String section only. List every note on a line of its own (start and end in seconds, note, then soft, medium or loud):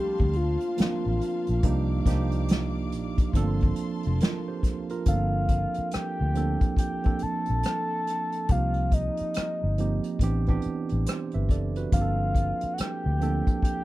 0.00 5.02 A#3 medium
0.00 5.02 F5 medium
0.00 1.60 A5 medium
0.00 1.60 C6 medium
1.63 3.33 D5 medium
1.63 3.33 D6 medium
3.34 5.04 A5 medium
3.34 5.04 C6 medium